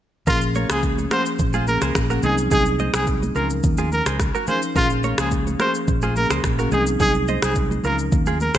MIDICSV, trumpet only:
0, 0, Header, 1, 2, 480
1, 0, Start_track
1, 0, Tempo, 560748
1, 231, Time_signature, 4, 2, 24, 8
1, 7345, End_track
2, 0, Start_track
2, 0, Title_t, "Trumpet"
2, 0, Program_c, 0, 56
2, 245, Note_on_c, 0, 65, 91
2, 345, Note_off_c, 0, 65, 0
2, 608, Note_on_c, 0, 68, 78
2, 701, Note_off_c, 0, 68, 0
2, 963, Note_on_c, 0, 72, 85
2, 1064, Note_off_c, 0, 72, 0
2, 1441, Note_on_c, 0, 70, 83
2, 1543, Note_off_c, 0, 70, 0
2, 1924, Note_on_c, 0, 68, 83
2, 2024, Note_off_c, 0, 68, 0
2, 2163, Note_on_c, 0, 68, 96
2, 2264, Note_off_c, 0, 68, 0
2, 2531, Note_on_c, 0, 68, 78
2, 2622, Note_off_c, 0, 68, 0
2, 2884, Note_on_c, 0, 70, 73
2, 2985, Note_off_c, 0, 70, 0
2, 3361, Note_on_c, 0, 70, 77
2, 3463, Note_off_c, 0, 70, 0
2, 3842, Note_on_c, 0, 72, 78
2, 3944, Note_off_c, 0, 72, 0
2, 4082, Note_on_c, 0, 65, 102
2, 4183, Note_off_c, 0, 65, 0
2, 4446, Note_on_c, 0, 68, 76
2, 4540, Note_off_c, 0, 68, 0
2, 4802, Note_on_c, 0, 72, 86
2, 4904, Note_off_c, 0, 72, 0
2, 5281, Note_on_c, 0, 70, 83
2, 5383, Note_off_c, 0, 70, 0
2, 5762, Note_on_c, 0, 68, 78
2, 5864, Note_off_c, 0, 68, 0
2, 6003, Note_on_c, 0, 68, 96
2, 6104, Note_off_c, 0, 68, 0
2, 6369, Note_on_c, 0, 68, 72
2, 6461, Note_off_c, 0, 68, 0
2, 6726, Note_on_c, 0, 70, 83
2, 6825, Note_off_c, 0, 70, 0
2, 7205, Note_on_c, 0, 70, 67
2, 7305, Note_off_c, 0, 70, 0
2, 7345, End_track
0, 0, End_of_file